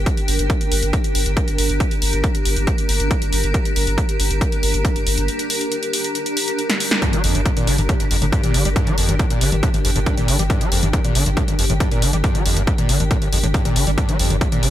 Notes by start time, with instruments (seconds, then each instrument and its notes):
Already playing: ambient pad D4 G4 A#4 G5
0.06 kick, closed hi-hat
0.17 closed hi-hat
0.28 sub bass G1, open hi-hat
0.39 sub bass G1, closed hi-hat
0.50 kick, closed hi-hat
0.61 closed hi-hat
0.70 sub bass G1, ambient pad A#5, open hi-hat
0.82 sub bass G1, closed hi-hat
0.93 kick, closed hi-hat
1.04 closed hi-hat
1.15 sub bass G1, open hi-hat
1.26 sub bass G1, closed hi-hat
1.37 kick, closed hi-hat
1.48 sub bass G1, closed hi-hat
1.58 sub bass G1, open hi-hat
1.69 sub bass G1, closed hi-hat
1.80 kick, closed hi-hat
1.91 closed hi-hat
2.02 sub bass G1, open hi-hat
2.13 sub bass G1, closed hi-hat
2.24 kick, closed hi-hat
2.35 closed hi-hat
2.45 sub bass G1, open hi-hat
2.56 sub bass G1, closed hi-hat
2.67 kick, closed hi-hat
2.78 closed hi-hat
2.89 sub bass G1, open hi-hat
3.00 sub bass G1, closed hi-hat
3.11 kick, closed hi-hat
3.22 sub bass G1, closed hi-hat
3.32 sub bass G1, open hi-hat
3.43 sub bass G1, closed hi-hat
3.54 kick, closed hi-hat
3.65 closed hi-hat
3.76 sub bass G1, open hi-hat
3.87 sub bass G1, closed hi-hat
3.98 kick, closed hi-hat
4.09 closed hi-hat
4.19 sub bass G1, open hi-hat
4.30 sub bass G1, closed hi-hat
4.41 kick, closed hi-hat
4.52 closed hi-hat
4.63 sub bass G1, open hi-hat
4.74 sub bass G1, closed hi-hat
4.85 kick, closed hi-hat
4.96 sub bass G1, closed hi-hat
5.06 sub bass G1, open hi-hat
5.17 sub bass G1, closed hi-hat
5.28 closed hi-hat
5.39 closed hi-hat
5.50 open hi-hat
5.61 closed hi-hat
5.72 closed hi-hat
5.83 closed hi-hat
5.93 open hi-hat
6.04 closed hi-hat
6.15 closed hi-hat
6.26 closed hi-hat
6.37 open hi-hat
6.48 closed hi-hat
6.59 closed hi-hat
6.70 snare, closed hi-hat
6.80 open hi-hat
6.91 snare, closed hi-hat
7.02 acid bass G2, kick, closed hi-hat
7.13 acid bass G3, closed hi-hat, mid tom
7.24 sub bass G1, acid bass F2, open hi-hat
7.35 sub bass G1, acid bass G2, closed hi-hat, mid tom
7.46 acid bass G2, kick, closed hi-hat
7.57 acid bass A#2, closed hi-hat, mid tom
7.66 sub bass G1, acid bass D3, ambient pad G5, open hi-hat
7.78 sub bass G1, acid bass G2, closed hi-hat, mid tom
7.89 acid bass A2, kick, closed hi-hat
8.00 acid bass G1, closed hi-hat, mid tom
8.11 sub bass G1, acid bass F2, open hi-hat
8.22 sub bass G1, acid bass A2, closed hi-hat, mid tom
8.32 acid bass G2, kick, closed hi-hat
8.43 sub bass G1, acid bass A#2, closed hi-hat, mid tom
8.54 sub bass G1, acid bass D3, open hi-hat
8.65 sub bass G1, acid bass G3, closed hi-hat, mid tom
8.76 acid bass G2, kick, closed hi-hat
8.87 acid bass G3, closed hi-hat, mid tom
8.98 sub bass G1, acid bass F2, open hi-hat
9.09 sub bass G1, acid bass G2, closed hi-hat, mid tom
9.19 acid bass G2, kick, closed hi-hat
9.30 acid bass A#2, closed hi-hat, mid tom
9.41 sub bass G1, acid bass D3, open hi-hat
9.52 sub bass G1, acid bass G2, closed hi-hat, mid tom
9.63 acid bass A2, kick, closed hi-hat
9.74 acid bass G1, closed hi-hat, mid tom
9.85 sub bass G1, acid bass F2, open hi-hat
9.96 sub bass G1, acid bass A2, closed hi-hat, mid tom
10.06 acid bass G2, kick, closed hi-hat
10.17 sub bass G1, acid bass A#2, closed hi-hat, mid tom
10.28 sub bass G1, acid bass D3, open hi-hat
10.39 sub bass G1, acid bass G3, closed hi-hat, mid tom
10.50 acid bass G2, kick, closed hi-hat
10.61 acid bass G3, closed hi-hat, mid tom
10.72 sub bass G1, acid bass F2, open hi-hat
10.83 sub bass G1, acid bass G2, closed hi-hat, mid tom
10.93 acid bass G2, kick, closed hi-hat
11.04 acid bass A#2, closed hi-hat, mid tom
11.15 sub bass G1, acid bass D3, open hi-hat
11.26 sub bass G1, acid bass G2, closed hi-hat, mid tom
11.37 acid bass A2, kick, closed hi-hat
11.48 acid bass G1, closed hi-hat, mid tom
11.59 sub bass G1, acid bass F2, open hi-hat
11.70 sub bass G1, acid bass A2, closed hi-hat, mid tom
11.80 acid bass G2, kick, closed hi-hat
11.91 sub bass G1, acid bass A#2, closed hi-hat, mid tom
12.02 sub bass G1, acid bass D3, open hi-hat
12.13 sub bass G1, acid bass G3, closed hi-hat, mid tom
12.24 acid bass G2, kick, closed hi-hat
12.35 acid bass G3, closed hi-hat, mid tom
12.46 sub bass G1, acid bass F2, open hi-hat
12.57 sub bass G1, acid bass G2, closed hi-hat, mid tom
12.67 acid bass G2, kick, closed hi-hat
12.78 acid bass A#2, closed hi-hat, mid tom
12.89 sub bass G1, acid bass D3, open hi-hat
13.00 sub bass G1, acid bass G2, closed hi-hat, mid tom
13.11 acid bass A2, kick, closed hi-hat
13.22 acid bass G1, closed hi-hat, mid tom
13.32 sub bass G1, acid bass F2, open hi-hat
13.43 sub bass G1, acid bass A2, closed hi-hat, mid tom
13.54 acid bass G2, kick, closed hi-hat
13.65 sub bass G1, acid bass A#2, closed hi-hat, mid tom
13.76 sub bass G1, acid bass D3, open hi-hat
13.87 sub bass G1, acid bass G3, closed hi-hat, mid tom
13.98 acid bass G2, kick, closed hi-hat
14.09 acid bass G3, closed hi-hat, mid tom
14.19 sub bass G1, acid bass F2, open hi-hat
14.30 sub bass G1, acid bass G2, closed hi-hat, mid tom
14.41 acid bass G2, kick, closed hi-hat
14.52 acid bass A#2, closed hi-hat, mid tom
14.61 sub bass G1, acid bass D3, ambient pad A#5, open hi-hat